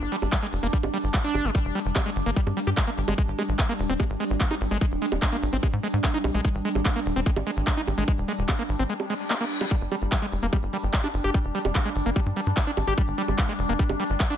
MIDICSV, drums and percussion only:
0, 0, Header, 1, 2, 480
1, 0, Start_track
1, 0, Tempo, 408163
1, 1820, Time_signature, 4, 2, 24, 8
1, 16905, End_track
2, 0, Start_track
2, 0, Title_t, "Drums"
2, 20, Note_on_c, 9, 42, 52
2, 138, Note_off_c, 9, 42, 0
2, 141, Note_on_c, 9, 46, 113
2, 258, Note_off_c, 9, 46, 0
2, 261, Note_on_c, 9, 42, 53
2, 261, Note_on_c, 9, 60, 40
2, 378, Note_off_c, 9, 42, 0
2, 378, Note_off_c, 9, 60, 0
2, 380, Note_on_c, 9, 39, 125
2, 380, Note_on_c, 9, 42, 78
2, 381, Note_on_c, 9, 36, 121
2, 498, Note_off_c, 9, 36, 0
2, 498, Note_off_c, 9, 39, 0
2, 498, Note_off_c, 9, 42, 0
2, 501, Note_on_c, 9, 42, 54
2, 618, Note_off_c, 9, 42, 0
2, 620, Note_on_c, 9, 46, 110
2, 738, Note_off_c, 9, 46, 0
2, 740, Note_on_c, 9, 42, 49
2, 858, Note_off_c, 9, 42, 0
2, 860, Note_on_c, 9, 36, 125
2, 861, Note_on_c, 9, 42, 77
2, 978, Note_off_c, 9, 36, 0
2, 978, Note_off_c, 9, 42, 0
2, 981, Note_on_c, 9, 42, 51
2, 981, Note_on_c, 9, 60, 84
2, 1098, Note_off_c, 9, 42, 0
2, 1098, Note_off_c, 9, 60, 0
2, 1101, Note_on_c, 9, 46, 120
2, 1218, Note_off_c, 9, 46, 0
2, 1221, Note_on_c, 9, 42, 50
2, 1338, Note_off_c, 9, 42, 0
2, 1341, Note_on_c, 9, 36, 127
2, 1341, Note_on_c, 9, 39, 125
2, 1341, Note_on_c, 9, 42, 76
2, 1458, Note_off_c, 9, 36, 0
2, 1458, Note_off_c, 9, 39, 0
2, 1458, Note_off_c, 9, 42, 0
2, 1461, Note_on_c, 9, 42, 49
2, 1578, Note_off_c, 9, 42, 0
2, 1581, Note_on_c, 9, 46, 108
2, 1581, Note_on_c, 9, 60, 40
2, 1698, Note_off_c, 9, 46, 0
2, 1698, Note_off_c, 9, 60, 0
2, 1701, Note_on_c, 9, 42, 50
2, 1819, Note_off_c, 9, 42, 0
2, 1821, Note_on_c, 9, 36, 125
2, 1821, Note_on_c, 9, 42, 78
2, 1938, Note_off_c, 9, 36, 0
2, 1939, Note_off_c, 9, 42, 0
2, 1941, Note_on_c, 9, 42, 49
2, 2058, Note_off_c, 9, 42, 0
2, 2061, Note_on_c, 9, 46, 106
2, 2178, Note_off_c, 9, 46, 0
2, 2181, Note_on_c, 9, 42, 51
2, 2298, Note_off_c, 9, 42, 0
2, 2301, Note_on_c, 9, 36, 123
2, 2301, Note_on_c, 9, 39, 118
2, 2301, Note_on_c, 9, 42, 74
2, 2301, Note_on_c, 9, 60, 80
2, 2418, Note_off_c, 9, 36, 0
2, 2418, Note_off_c, 9, 39, 0
2, 2418, Note_off_c, 9, 42, 0
2, 2418, Note_off_c, 9, 60, 0
2, 2421, Note_on_c, 9, 42, 51
2, 2539, Note_off_c, 9, 42, 0
2, 2541, Note_on_c, 9, 46, 109
2, 2658, Note_off_c, 9, 46, 0
2, 2661, Note_on_c, 9, 42, 50
2, 2779, Note_off_c, 9, 42, 0
2, 2781, Note_on_c, 9, 36, 127
2, 2781, Note_on_c, 9, 42, 73
2, 2898, Note_off_c, 9, 36, 0
2, 2899, Note_off_c, 9, 42, 0
2, 2901, Note_on_c, 9, 42, 51
2, 2901, Note_on_c, 9, 60, 42
2, 3019, Note_off_c, 9, 42, 0
2, 3019, Note_off_c, 9, 60, 0
2, 3021, Note_on_c, 9, 46, 115
2, 3138, Note_off_c, 9, 46, 0
2, 3141, Note_on_c, 9, 42, 50
2, 3259, Note_off_c, 9, 42, 0
2, 3261, Note_on_c, 9, 36, 127
2, 3261, Note_on_c, 9, 39, 112
2, 3261, Note_on_c, 9, 42, 71
2, 3378, Note_off_c, 9, 36, 0
2, 3379, Note_off_c, 9, 39, 0
2, 3379, Note_off_c, 9, 42, 0
2, 3381, Note_on_c, 9, 42, 48
2, 3499, Note_off_c, 9, 42, 0
2, 3501, Note_on_c, 9, 46, 109
2, 3619, Note_off_c, 9, 46, 0
2, 3621, Note_on_c, 9, 42, 51
2, 3621, Note_on_c, 9, 60, 78
2, 3739, Note_off_c, 9, 42, 0
2, 3739, Note_off_c, 9, 60, 0
2, 3741, Note_on_c, 9, 36, 123
2, 3741, Note_on_c, 9, 42, 75
2, 3858, Note_off_c, 9, 36, 0
2, 3859, Note_off_c, 9, 42, 0
2, 3861, Note_on_c, 9, 42, 49
2, 3979, Note_off_c, 9, 42, 0
2, 3981, Note_on_c, 9, 46, 104
2, 3981, Note_on_c, 9, 60, 41
2, 4098, Note_off_c, 9, 46, 0
2, 4098, Note_off_c, 9, 60, 0
2, 4101, Note_on_c, 9, 42, 54
2, 4219, Note_off_c, 9, 42, 0
2, 4221, Note_on_c, 9, 36, 117
2, 4221, Note_on_c, 9, 39, 109
2, 4221, Note_on_c, 9, 42, 75
2, 4338, Note_off_c, 9, 36, 0
2, 4339, Note_off_c, 9, 39, 0
2, 4339, Note_off_c, 9, 42, 0
2, 4341, Note_on_c, 9, 42, 51
2, 4459, Note_off_c, 9, 42, 0
2, 4461, Note_on_c, 9, 46, 112
2, 4578, Note_off_c, 9, 46, 0
2, 4581, Note_on_c, 9, 42, 49
2, 4698, Note_off_c, 9, 42, 0
2, 4701, Note_on_c, 9, 36, 122
2, 4701, Note_on_c, 9, 42, 76
2, 4701, Note_on_c, 9, 60, 83
2, 4818, Note_off_c, 9, 36, 0
2, 4819, Note_off_c, 9, 42, 0
2, 4819, Note_off_c, 9, 60, 0
2, 4821, Note_on_c, 9, 42, 52
2, 4939, Note_off_c, 9, 42, 0
2, 4941, Note_on_c, 9, 46, 111
2, 5059, Note_off_c, 9, 46, 0
2, 5061, Note_on_c, 9, 42, 51
2, 5179, Note_off_c, 9, 42, 0
2, 5181, Note_on_c, 9, 36, 127
2, 5181, Note_on_c, 9, 39, 115
2, 5181, Note_on_c, 9, 42, 77
2, 5298, Note_off_c, 9, 36, 0
2, 5298, Note_off_c, 9, 39, 0
2, 5298, Note_off_c, 9, 42, 0
2, 5301, Note_on_c, 9, 42, 48
2, 5301, Note_on_c, 9, 60, 41
2, 5419, Note_off_c, 9, 42, 0
2, 5419, Note_off_c, 9, 60, 0
2, 5421, Note_on_c, 9, 46, 108
2, 5538, Note_off_c, 9, 46, 0
2, 5541, Note_on_c, 9, 42, 50
2, 5658, Note_off_c, 9, 42, 0
2, 5660, Note_on_c, 9, 36, 115
2, 5661, Note_on_c, 9, 42, 76
2, 5778, Note_off_c, 9, 36, 0
2, 5778, Note_off_c, 9, 42, 0
2, 5781, Note_on_c, 9, 42, 50
2, 5898, Note_off_c, 9, 42, 0
2, 5900, Note_on_c, 9, 46, 99
2, 6018, Note_off_c, 9, 46, 0
2, 6021, Note_on_c, 9, 42, 52
2, 6021, Note_on_c, 9, 60, 85
2, 6138, Note_off_c, 9, 42, 0
2, 6138, Note_off_c, 9, 60, 0
2, 6140, Note_on_c, 9, 36, 112
2, 6141, Note_on_c, 9, 39, 116
2, 6141, Note_on_c, 9, 42, 77
2, 6258, Note_off_c, 9, 36, 0
2, 6258, Note_off_c, 9, 39, 0
2, 6258, Note_off_c, 9, 42, 0
2, 6261, Note_on_c, 9, 42, 51
2, 6378, Note_off_c, 9, 42, 0
2, 6381, Note_on_c, 9, 46, 105
2, 6498, Note_off_c, 9, 46, 0
2, 6500, Note_on_c, 9, 42, 51
2, 6618, Note_off_c, 9, 42, 0
2, 6620, Note_on_c, 9, 36, 112
2, 6620, Note_on_c, 9, 42, 75
2, 6620, Note_on_c, 9, 60, 41
2, 6738, Note_off_c, 9, 36, 0
2, 6738, Note_off_c, 9, 42, 0
2, 6738, Note_off_c, 9, 60, 0
2, 6740, Note_on_c, 9, 42, 53
2, 6858, Note_off_c, 9, 42, 0
2, 6861, Note_on_c, 9, 46, 105
2, 6978, Note_off_c, 9, 46, 0
2, 6981, Note_on_c, 9, 42, 52
2, 7099, Note_off_c, 9, 42, 0
2, 7100, Note_on_c, 9, 36, 119
2, 7101, Note_on_c, 9, 39, 110
2, 7101, Note_on_c, 9, 42, 75
2, 7218, Note_off_c, 9, 36, 0
2, 7219, Note_off_c, 9, 39, 0
2, 7219, Note_off_c, 9, 42, 0
2, 7221, Note_on_c, 9, 42, 51
2, 7339, Note_off_c, 9, 42, 0
2, 7341, Note_on_c, 9, 46, 106
2, 7341, Note_on_c, 9, 60, 85
2, 7459, Note_off_c, 9, 46, 0
2, 7459, Note_off_c, 9, 60, 0
2, 7461, Note_on_c, 9, 42, 52
2, 7579, Note_off_c, 9, 42, 0
2, 7581, Note_on_c, 9, 36, 117
2, 7581, Note_on_c, 9, 42, 82
2, 7698, Note_off_c, 9, 36, 0
2, 7699, Note_off_c, 9, 42, 0
2, 7701, Note_on_c, 9, 42, 54
2, 7819, Note_off_c, 9, 42, 0
2, 7821, Note_on_c, 9, 46, 99
2, 7938, Note_off_c, 9, 46, 0
2, 7941, Note_on_c, 9, 42, 58
2, 7941, Note_on_c, 9, 60, 41
2, 8059, Note_off_c, 9, 42, 0
2, 8059, Note_off_c, 9, 60, 0
2, 8060, Note_on_c, 9, 36, 113
2, 8061, Note_on_c, 9, 39, 116
2, 8061, Note_on_c, 9, 42, 83
2, 8178, Note_off_c, 9, 36, 0
2, 8178, Note_off_c, 9, 39, 0
2, 8178, Note_off_c, 9, 42, 0
2, 8181, Note_on_c, 9, 42, 57
2, 8298, Note_off_c, 9, 42, 0
2, 8301, Note_on_c, 9, 46, 105
2, 8419, Note_off_c, 9, 46, 0
2, 8421, Note_on_c, 9, 42, 54
2, 8538, Note_off_c, 9, 42, 0
2, 8540, Note_on_c, 9, 36, 115
2, 8541, Note_on_c, 9, 42, 79
2, 8658, Note_off_c, 9, 36, 0
2, 8658, Note_off_c, 9, 42, 0
2, 8661, Note_on_c, 9, 42, 57
2, 8661, Note_on_c, 9, 60, 86
2, 8778, Note_off_c, 9, 42, 0
2, 8778, Note_off_c, 9, 60, 0
2, 8781, Note_on_c, 9, 46, 107
2, 8898, Note_off_c, 9, 46, 0
2, 8901, Note_on_c, 9, 42, 54
2, 9018, Note_off_c, 9, 42, 0
2, 9021, Note_on_c, 9, 36, 116
2, 9021, Note_on_c, 9, 39, 113
2, 9021, Note_on_c, 9, 42, 81
2, 9138, Note_off_c, 9, 36, 0
2, 9138, Note_off_c, 9, 39, 0
2, 9138, Note_off_c, 9, 42, 0
2, 9141, Note_on_c, 9, 42, 52
2, 9258, Note_off_c, 9, 42, 0
2, 9261, Note_on_c, 9, 46, 102
2, 9261, Note_on_c, 9, 60, 41
2, 9378, Note_off_c, 9, 46, 0
2, 9378, Note_off_c, 9, 60, 0
2, 9381, Note_on_c, 9, 42, 53
2, 9498, Note_off_c, 9, 42, 0
2, 9501, Note_on_c, 9, 36, 117
2, 9501, Note_on_c, 9, 42, 84
2, 9618, Note_off_c, 9, 36, 0
2, 9618, Note_off_c, 9, 42, 0
2, 9621, Note_on_c, 9, 42, 54
2, 9738, Note_off_c, 9, 42, 0
2, 9741, Note_on_c, 9, 46, 106
2, 9858, Note_off_c, 9, 46, 0
2, 9861, Note_on_c, 9, 42, 57
2, 9978, Note_off_c, 9, 42, 0
2, 9980, Note_on_c, 9, 36, 114
2, 9981, Note_on_c, 9, 39, 121
2, 9981, Note_on_c, 9, 42, 82
2, 9981, Note_on_c, 9, 60, 75
2, 10098, Note_off_c, 9, 36, 0
2, 10098, Note_off_c, 9, 39, 0
2, 10098, Note_off_c, 9, 42, 0
2, 10098, Note_off_c, 9, 60, 0
2, 10101, Note_on_c, 9, 42, 54
2, 10218, Note_off_c, 9, 42, 0
2, 10220, Note_on_c, 9, 46, 104
2, 10338, Note_off_c, 9, 46, 0
2, 10341, Note_on_c, 9, 42, 55
2, 10458, Note_off_c, 9, 42, 0
2, 10461, Note_on_c, 9, 42, 82
2, 10578, Note_off_c, 9, 42, 0
2, 10580, Note_on_c, 9, 42, 57
2, 10580, Note_on_c, 9, 60, 42
2, 10698, Note_off_c, 9, 42, 0
2, 10698, Note_off_c, 9, 60, 0
2, 10701, Note_on_c, 9, 46, 106
2, 10818, Note_off_c, 9, 46, 0
2, 10821, Note_on_c, 9, 42, 55
2, 10938, Note_off_c, 9, 42, 0
2, 10941, Note_on_c, 9, 39, 118
2, 10941, Note_on_c, 9, 42, 82
2, 11058, Note_off_c, 9, 39, 0
2, 11058, Note_off_c, 9, 42, 0
2, 11061, Note_on_c, 9, 42, 55
2, 11178, Note_off_c, 9, 42, 0
2, 11181, Note_on_c, 9, 46, 107
2, 11298, Note_off_c, 9, 46, 0
2, 11301, Note_on_c, 9, 42, 57
2, 11301, Note_on_c, 9, 60, 77
2, 11418, Note_off_c, 9, 42, 0
2, 11418, Note_off_c, 9, 60, 0
2, 11420, Note_on_c, 9, 36, 122
2, 11421, Note_on_c, 9, 42, 82
2, 11538, Note_off_c, 9, 36, 0
2, 11538, Note_off_c, 9, 42, 0
2, 11541, Note_on_c, 9, 42, 54
2, 11658, Note_off_c, 9, 42, 0
2, 11661, Note_on_c, 9, 46, 108
2, 11661, Note_on_c, 9, 60, 38
2, 11779, Note_off_c, 9, 46, 0
2, 11779, Note_off_c, 9, 60, 0
2, 11781, Note_on_c, 9, 42, 57
2, 11899, Note_off_c, 9, 42, 0
2, 11900, Note_on_c, 9, 36, 118
2, 11901, Note_on_c, 9, 39, 121
2, 11901, Note_on_c, 9, 42, 81
2, 12018, Note_off_c, 9, 36, 0
2, 12018, Note_off_c, 9, 39, 0
2, 12018, Note_off_c, 9, 42, 0
2, 12021, Note_on_c, 9, 42, 56
2, 12139, Note_off_c, 9, 42, 0
2, 12141, Note_on_c, 9, 46, 113
2, 12258, Note_off_c, 9, 46, 0
2, 12261, Note_on_c, 9, 42, 55
2, 12378, Note_off_c, 9, 42, 0
2, 12380, Note_on_c, 9, 36, 120
2, 12380, Note_on_c, 9, 42, 86
2, 12380, Note_on_c, 9, 60, 76
2, 12498, Note_off_c, 9, 36, 0
2, 12498, Note_off_c, 9, 42, 0
2, 12498, Note_off_c, 9, 60, 0
2, 12501, Note_on_c, 9, 42, 56
2, 12618, Note_off_c, 9, 42, 0
2, 12621, Note_on_c, 9, 46, 111
2, 12738, Note_off_c, 9, 46, 0
2, 12741, Note_on_c, 9, 42, 54
2, 12858, Note_off_c, 9, 42, 0
2, 12861, Note_on_c, 9, 36, 121
2, 12861, Note_on_c, 9, 39, 123
2, 12861, Note_on_c, 9, 42, 81
2, 12978, Note_off_c, 9, 36, 0
2, 12978, Note_off_c, 9, 39, 0
2, 12978, Note_off_c, 9, 42, 0
2, 12981, Note_on_c, 9, 42, 51
2, 12981, Note_on_c, 9, 60, 36
2, 13098, Note_off_c, 9, 42, 0
2, 13098, Note_off_c, 9, 60, 0
2, 13101, Note_on_c, 9, 46, 110
2, 13218, Note_off_c, 9, 46, 0
2, 13221, Note_on_c, 9, 42, 56
2, 13338, Note_off_c, 9, 42, 0
2, 13340, Note_on_c, 9, 36, 127
2, 13341, Note_on_c, 9, 42, 84
2, 13458, Note_off_c, 9, 36, 0
2, 13458, Note_off_c, 9, 42, 0
2, 13461, Note_on_c, 9, 42, 52
2, 13578, Note_off_c, 9, 42, 0
2, 13581, Note_on_c, 9, 46, 112
2, 13698, Note_off_c, 9, 46, 0
2, 13701, Note_on_c, 9, 42, 56
2, 13701, Note_on_c, 9, 60, 77
2, 13818, Note_off_c, 9, 42, 0
2, 13818, Note_off_c, 9, 60, 0
2, 13820, Note_on_c, 9, 36, 124
2, 13820, Note_on_c, 9, 39, 124
2, 13820, Note_on_c, 9, 42, 81
2, 13938, Note_off_c, 9, 36, 0
2, 13938, Note_off_c, 9, 39, 0
2, 13938, Note_off_c, 9, 42, 0
2, 13940, Note_on_c, 9, 42, 52
2, 14058, Note_off_c, 9, 42, 0
2, 14060, Note_on_c, 9, 46, 112
2, 14178, Note_off_c, 9, 46, 0
2, 14180, Note_on_c, 9, 42, 55
2, 14298, Note_off_c, 9, 42, 0
2, 14300, Note_on_c, 9, 36, 120
2, 14300, Note_on_c, 9, 42, 78
2, 14300, Note_on_c, 9, 60, 37
2, 14418, Note_off_c, 9, 36, 0
2, 14418, Note_off_c, 9, 42, 0
2, 14418, Note_off_c, 9, 60, 0
2, 14420, Note_on_c, 9, 42, 56
2, 14538, Note_off_c, 9, 42, 0
2, 14540, Note_on_c, 9, 46, 117
2, 14658, Note_off_c, 9, 46, 0
2, 14660, Note_on_c, 9, 42, 54
2, 14778, Note_off_c, 9, 42, 0
2, 14780, Note_on_c, 9, 39, 123
2, 14780, Note_on_c, 9, 42, 80
2, 14781, Note_on_c, 9, 36, 125
2, 14898, Note_off_c, 9, 36, 0
2, 14898, Note_off_c, 9, 39, 0
2, 14898, Note_off_c, 9, 42, 0
2, 14900, Note_on_c, 9, 42, 53
2, 15018, Note_off_c, 9, 42, 0
2, 15020, Note_on_c, 9, 46, 113
2, 15020, Note_on_c, 9, 60, 74
2, 15137, Note_off_c, 9, 46, 0
2, 15137, Note_off_c, 9, 60, 0
2, 15140, Note_on_c, 9, 42, 52
2, 15257, Note_off_c, 9, 42, 0
2, 15260, Note_on_c, 9, 36, 127
2, 15260, Note_on_c, 9, 42, 78
2, 15378, Note_off_c, 9, 36, 0
2, 15378, Note_off_c, 9, 42, 0
2, 15380, Note_on_c, 9, 42, 51
2, 15498, Note_off_c, 9, 42, 0
2, 15500, Note_on_c, 9, 46, 112
2, 15618, Note_off_c, 9, 46, 0
2, 15620, Note_on_c, 9, 42, 53
2, 15620, Note_on_c, 9, 60, 40
2, 15738, Note_off_c, 9, 42, 0
2, 15738, Note_off_c, 9, 60, 0
2, 15741, Note_on_c, 9, 36, 127
2, 15741, Note_on_c, 9, 39, 122
2, 15741, Note_on_c, 9, 42, 77
2, 15858, Note_off_c, 9, 36, 0
2, 15858, Note_off_c, 9, 39, 0
2, 15858, Note_off_c, 9, 42, 0
2, 15860, Note_on_c, 9, 42, 55
2, 15978, Note_off_c, 9, 42, 0
2, 15981, Note_on_c, 9, 46, 111
2, 16098, Note_off_c, 9, 46, 0
2, 16101, Note_on_c, 9, 42, 52
2, 16218, Note_off_c, 9, 42, 0
2, 16220, Note_on_c, 9, 42, 78
2, 16221, Note_on_c, 9, 36, 127
2, 16338, Note_off_c, 9, 36, 0
2, 16338, Note_off_c, 9, 42, 0
2, 16341, Note_on_c, 9, 42, 56
2, 16341, Note_on_c, 9, 60, 79
2, 16458, Note_off_c, 9, 42, 0
2, 16458, Note_off_c, 9, 60, 0
2, 16460, Note_on_c, 9, 46, 117
2, 16578, Note_off_c, 9, 46, 0
2, 16581, Note_on_c, 9, 42, 51
2, 16698, Note_off_c, 9, 42, 0
2, 16701, Note_on_c, 9, 36, 127
2, 16701, Note_on_c, 9, 39, 125
2, 16701, Note_on_c, 9, 42, 74
2, 16818, Note_off_c, 9, 36, 0
2, 16818, Note_off_c, 9, 39, 0
2, 16818, Note_off_c, 9, 42, 0
2, 16820, Note_on_c, 9, 42, 52
2, 16905, Note_off_c, 9, 42, 0
2, 16905, End_track
0, 0, End_of_file